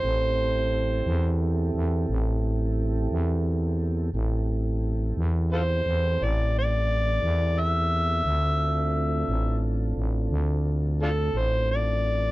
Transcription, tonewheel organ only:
X:1
M:12/8
L:1/8
Q:3/8=58
K:Am
V:1 name="Tonewheel organ"
[CEGA]12 | [CEGA]12 | [CDFA]12 |]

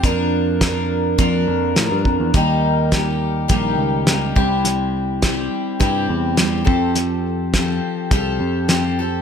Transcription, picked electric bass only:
X:1
M:4/4
L:1/16
Q:1/4=104
K:F
V:1 name="Picked electric bass" clef=bass
F,,8 F,,2 F,,2 A,, G,, F,, E,, | _E,,8 B,,,2 _D,,4 C,,2- | C,,6 z2 G,,2 E,,4 F,,2- | F,,6 z2 C,,2 F,,6 |]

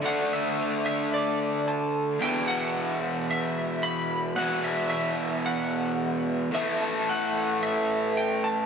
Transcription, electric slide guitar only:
X:1
M:4/4
L:1/16
Q:1/4=111
K:Edor
V:1 name="Electric slide guitar"
f2 e4 e2 d4 a3 z | g2 f6 e4 b3 z | f2 e2 e4 f6 z2 | e2 a2 f4 e4 g2 a2 |]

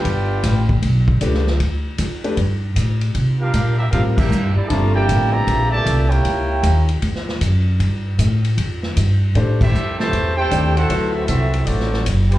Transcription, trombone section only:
X:1
M:4/4
L:1/8
Q:"Swing" 1/4=155
K:Clyd
V:1 name="Trombone section"
[B,DG]3 z4 z | z8 | z [G,_B,=F]2 [G,B,E] F [G,B,E]2 [G,B,D] | A, [_B,EG]2 [E,G,B,]2 [_B,,E,A,]2 [B,EG]- |
[_B,EG]3 z4 z | z8 | z [G,CE]2 [C,E,A,]2 [CEG]2 [A,CF]- | [A,CF] [A,CE] [A,CE]2 [F,A,D]2 z [B,DG] |]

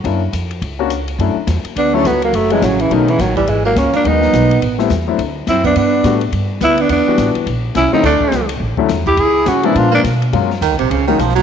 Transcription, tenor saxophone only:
X:1
M:4/4
L:1/8
Q:"Swing" 1/4=210
K:Gb
V:1 name="Tenor saxophone"
z8 | [K:Bm] z4 D C B, ^A, | A, ^G, F, E, ^D, E, F, =G, | ^G, ^A, C D ^D4 |
z6 E D | D3 z3 E D | D3 z3 E ^D | D3 z4 G |
^G2 F E ^E D z2 | [K:Ebm] z8 |]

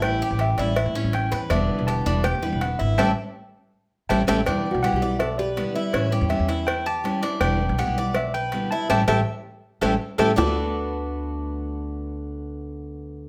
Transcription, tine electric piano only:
X:1
M:4/4
L:1/16
Q:1/4=162
K:D
V:1 name="Tine electric piano"
g4 e2 d2 e4 g3 z | e4 a4 g4 f2 e2 | [ega]2 z8 z2 [ega]2 [ega]2 | g4 f4 e2 d6 |
c4 e4 g2 a4 z2 | g4 f4 e2 g4 a2 | [ega]2 [ega]2 z6 [ega]2 z2 [ega]2 | d'16- |
d'16 |]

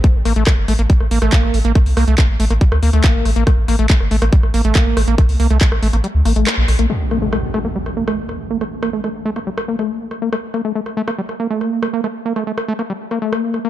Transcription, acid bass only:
X:1
M:4/4
L:1/16
Q:1/4=140
K:Gdor
V:1 name="Acid bass"
A, z B, A, A, z A, B, G, z B, A, B,2 A, B, | A, z B, A, z2 A, B, G, z B, A, B,2 A, B, | A, z B, A, A, z A, B, G, z B, A, B,2 A, B, | A, z B, A, A, z A, B, G, z B, A, B,2 A, B, |
A, z B, A, A, z A, B, G, z B, A, B,2 A, B, | A, z B, A, A, z A, B, G, z B, A, B,2 A, B, | A, z B, A, A, z A, B, G, z B, A, B,2 A, B, | A, z B, A, A, z A, B, G, z B, A, B,2 A, B, |]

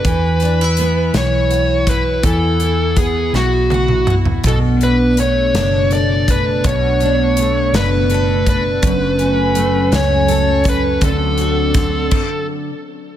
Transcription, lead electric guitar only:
X:1
M:6/8
L:1/8
Q:3/8=55
K:Emix
V:1 name="Lead electric guitar"
B3 c2 B | A2 G F2 z | A B c2 d B | c3 B2 B- |
B3 c2 B | A4 z2 |]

